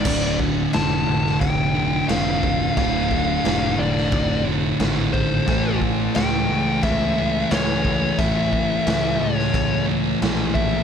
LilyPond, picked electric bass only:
\new Staff \with { instrumentName = "Picked electric bass" } { \clef bass \time 4/4 \key d \minor \tempo 4 = 89 d,,4 f,,8 f,,8 f,,4 f,,4 | d,,4 f,,8 f,,8 f,,4 gis,,4 | a,,4 cis,8 cis,8 cis,4 cis,4 | a,,4 cis,8 cis,8 cis,4 bes,,4 | }